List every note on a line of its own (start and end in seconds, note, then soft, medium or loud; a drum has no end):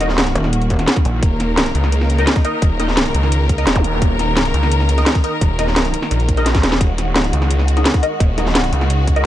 0.00 0.34 D#1 loud
0.00 9.26 D#3 medium
0.00 6.77 A#3 medium
0.00 0.08 D#4 medium
0.00 1.20 F#4 loud
0.00 0.08 A#4 medium
0.00 0.08 D#5 medium
0.00 snare soft
0.00 closed hi-hat medium
0.09 snare soft
0.18 snare loud
0.18 closed hi-hat medium
0.27 closed hi-hat soft
0.35 0.86 D#1 loud
0.35 closed hi-hat medium
0.44 snare soft
0.53 closed hi-hat medium
0.62 closed hi-hat soft
0.70 kick medium
0.70 closed hi-hat medium
0.79 snare soft
0.79 closed hi-hat soft
0.88 snare loud
0.88 closed hi-hat medium
0.96 kick loud
0.96 snare soft
0.96 closed hi-hat soft
1.05 1.21 A#1 loud
1.05 closed hi-hat medium
1.23 1.74 D#1 loud
1.23 6.79 A#4 loud
1.23 kick loud
1.23 closed hi-hat medium
1.40 snare soft
1.40 closed hi-hat medium
1.57 snare loud
1.57 closed hi-hat medium
1.66 closed hi-hat soft
1.75 2.26 C#2 loud
1.75 closed hi-hat medium
1.84 snare soft
1.92 closed hi-hat loud
2.01 snare soft
2.10 closed hi-hat medium
2.18 2.26 D#4 medium
2.18 2.26 A#4 medium
2.18 2.26 D#5 medium
2.18 snare soft
2.18 closed hi-hat soft
2.27 snare loud
2.27 closed hi-hat medium
2.36 kick loud
2.36 closed hi-hat soft
2.45 2.56 D#4 medium
2.45 2.56 A#4 medium
2.45 2.56 D#5 medium
2.45 closed hi-hat medium
2.62 3.13 D#1 loud
2.62 kick loud
2.62 closed hi-hat medium
2.80 2.87 D#4 medium
2.80 2.87 A#4 medium
2.80 2.87 D#5 medium
2.80 snare soft
2.80 closed hi-hat medium
2.88 snare soft
2.97 snare loud
2.97 closed hi-hat medium
3.06 closed hi-hat soft
3.14 3.65 C#2 loud
3.14 closed hi-hat medium
3.23 snare soft
3.32 closed hi-hat loud
3.49 kick medium
3.49 closed hi-hat medium
3.58 3.70 D#4 medium
3.58 3.70 A#4 medium
3.58 3.70 D#5 loud
3.58 closed hi-hat soft
3.67 4.00 D#1 medium
3.67 snare loud
3.67 closed hi-hat medium
3.76 kick loud
3.76 snare soft
3.76 closed hi-hat soft
3.76 zap medium
3.84 closed hi-hat medium
4.02 4.53 D#1 loud
4.02 kick loud
4.02 closed hi-hat medium
4.19 snare soft
4.19 closed hi-hat medium
4.37 snare loud
4.37 closed hi-hat medium
4.45 closed hi-hat soft
4.54 5.05 C#2 loud
4.54 closed hi-hat medium
4.63 snare soft
4.72 closed hi-hat loud
4.80 snare soft
4.89 closed hi-hat medium
4.98 5.05 D#4 medium
4.98 5.05 A#4 medium
4.98 5.05 D#5 medium
4.98 snare soft
4.98 closed hi-hat soft
5.06 snare loud
5.06 closed hi-hat medium
5.15 kick loud
5.15 closed hi-hat soft
5.24 5.35 D#4 medium
5.24 5.35 A#4 medium
5.24 5.35 D#5 medium
5.24 closed hi-hat medium
5.41 5.92 D#1 loud
5.41 kick loud
5.41 closed hi-hat loud
5.59 5.66 D#4 medium
5.59 5.66 A#4 medium
5.59 5.66 D#5 medium
5.59 snare soft
5.59 closed hi-hat medium
5.68 snare soft
5.76 snare loud
5.76 closed hi-hat loud
5.85 closed hi-hat soft
5.94 closed hi-hat medium
6.02 snare soft
6.11 6.62 A#1 medium
6.11 closed hi-hat loud
6.20 closed hi-hat soft
6.29 kick medium
6.29 closed hi-hat medium
6.37 6.49 D#4 medium
6.37 6.49 A#4 medium
6.37 6.49 D#5 medium
6.37 snare soft
6.37 closed hi-hat soft
6.46 snare medium
6.46 closed hi-hat loud
6.55 kick loud
6.55 snare medium
6.55 closed hi-hat soft
6.63 6.79 D#1 loud
6.63 snare medium
6.63 closed hi-hat medium
6.72 snare medium
6.81 7.32 D#1 loud
6.81 9.26 G#3 medium
6.81 9.26 F#4 medium
6.81 kick loud
6.81 closed hi-hat loud
6.98 snare soft
6.98 closed hi-hat medium
7.16 snare loud
7.16 closed hi-hat loud
7.24 closed hi-hat soft
7.33 7.84 C#2 loud
7.33 closed hi-hat medium
7.42 snare soft
7.51 closed hi-hat loud
7.59 snare soft
7.68 closed hi-hat medium
7.77 7.84 D#4 medium
7.77 7.84 A#4 medium
7.77 7.84 D#5 medium
7.77 snare soft
7.77 closed hi-hat soft
7.86 snare loud
7.86 closed hi-hat loud
7.94 kick loud
7.94 closed hi-hat soft
8.03 8.14 D#4 medium
8.03 8.15 A#4 medium
8.03 8.15 D#5 medium
8.03 closed hi-hat medium
8.20 8.71 D#1 loud
8.20 kick loud
8.20 closed hi-hat medium
8.38 8.45 D#4 medium
8.38 8.45 A#4 medium
8.38 8.45 D#5 medium
8.38 snare soft
8.38 closed hi-hat medium
8.46 snare soft
8.55 snare loud
8.55 closed hi-hat loud
8.64 closed hi-hat soft
8.73 9.24 C#2 loud
8.73 closed hi-hat medium
8.81 snare soft
8.90 closed hi-hat loud
9.07 kick medium
9.07 closed hi-hat medium
9.16 9.26 D#4 medium
9.16 9.26 A#4 medium
9.16 9.26 D#5 medium
9.16 closed hi-hat soft